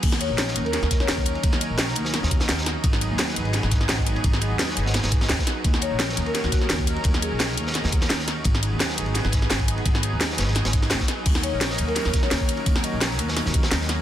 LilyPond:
<<
  \new Staff \with { instrumentName = "Marimba" } { \time 4/4 \key ees \minor \tempo 4 = 171 r8 des''8 r8. bes'16 bes'16 r8 des''4~ des''16~ | des''16 r16 ees''4 r2 r8 | r1 | r1 |
r8 des''8 r8. bes'16 bes'16 ges'16 ges'8 r4 | r8 aes'4. r2 | r1 | r1 |
r8 des''8 r8. bes'16 r8. des''4~ des''16~ | des''16 r16 ees''4 r2 r8 | }
  \new Staff \with { instrumentName = "Analog synth pad" } { \time 4/4 \key ees \minor << { <des' bes'>1~ | <des' bes'>1 | <ces' aes'>1~ | <ces' aes'>1 |
<des' bes'>1~ | <des' bes'>1 | <ces' aes'>1~ | <ces' aes'>1 |
<des' bes'>1~ | <des' bes'>1 | } \\ { <ges ees'>1~ | <ges ees'>1~ | <ges ees'>1~ | <ges ees'>1~ |
<ges ees'>1~ | <ges ees'>1 | <ges ees'>1~ | <ges ees'>1~ |
<ges ees'>1~ | <ges ees'>1 | } >> }
  \new Staff \with { instrumentName = "Upright bass" } { \clef bass \time 4/4 \key ees \minor ees,8. bes,,8. ees,8. ees,8. ees,8. r16 | ees,8. bes,,8. ees,8. ees,8. ees,8. r16 | aes,,8. ees,8. aes,,8. aes,,8. aes,,8. r16 | aes,,8. ees,8. aes,,8. aes,,8. ees,16 r8. |
ees,8. bes,,8. ees,8. ees,8. ees,8. r16 | ees,8. bes,,8. ees,8. ees,8. ees,8. r16 | aes,,8. ees,8. aes,,8. aes,,8. aes,,8. r16 | aes,,8. ees,8. aes,,8. aes,,8. ees,16 r8. |
ees,8. bes,,8. ees,8. ees,8. ees,8. r16 | ees,8. bes,,8. ees,8. ees,8. ees,8. r16 | }
  \new DrumStaff \with { instrumentName = "Drums" } \drummode { \time 4/4 <cymc hh bd cymr>16 sn16 <hh cymr>8 <hh cymr sn>16 sn16 <hh cymr>16 cymr16 <hh cymr sn>16 sn16 <hh bd cymr sn>16 sn16 <hh cymr sn>16 bd16 <hh cymr>16 cymr16 | <hh bd cymr>16 <cymr sn>16 <hh cymr>8 <hh cymr sn>16 sn16 <hh cymr>16 sn16 <hh cymr sn>16 sn16 <hh bd cymr>16 sn16 <hh cymr sn>16 sn16 <hh cymr sn>8 | <hh bd cymr>16 sn16 <hh cymr>8 <hh cymr sn>16 sn16 <hh cymr>16 cymr16 <hh cymr sn>16 sn16 <hh bd cymr sn>16 sn16 <hh cymr sn>16 bd16 <hh cymr>16 cymr16 | <hh bd cymr>16 <cymr sn>16 <hh cymr>8 <hh cymr sn>16 sn16 <hh cymr>16 sn16 <hh cymr sn>16 <cymr sn>16 <hh bd cymr>16 sn16 <hh cymr sn>16 <bd sn>16 <hh cymr sn>8 |
<hh bd cymr>16 sn16 <hh cymr>8 <hh cymr sn>16 sn16 <hh cymr>16 cymr16 <hh cymr sn>16 sn16 <hh bd cymr sn>16 sn16 <hh cymr sn>16 bd16 <hh cymr>16 cymr16 | <hh bd cymr>16 <cymr sn>16 <hh cymr>8 <hh cymr sn>16 sn16 <hh cymr>16 sn16 <hh cymr sn>16 sn16 <hh bd cymr>16 sn16 <hh cymr sn>16 sn16 <hh cymr sn>8 | <hh bd cymr>16 sn16 <hh cymr>8 <hh cymr sn>16 sn16 <hh cymr>16 cymr16 <hh cymr sn>16 sn16 <hh bd cymr sn>16 sn16 <hh cymr sn>16 bd16 <hh cymr>16 cymr16 | <hh bd cymr>16 <cymr sn>16 <hh cymr>8 <hh cymr sn>16 sn16 <hh cymr sn>16 sn16 <hh cymr sn>16 <cymr sn>16 <hh bd sn>16 <cymr sn>16 <hh cymr sn>16 <bd sn>16 <hh cymr sn>8 |
<cymc hh bd cymr>16 sn16 <hh cymr>8 <hh cymr sn>16 sn16 <hh cymr>16 cymr16 <hh cymr sn>16 sn16 <hh bd cymr sn>16 sn16 <hh cymr sn>16 bd16 <hh cymr>16 cymr16 | <hh bd cymr>16 <cymr sn>16 <hh cymr>8 <hh cymr sn>16 sn16 <hh cymr>16 sn16 <hh cymr sn>16 sn16 <hh bd cymr>16 sn16 <hh cymr sn>16 sn16 <hh cymr sn>8 | }
>>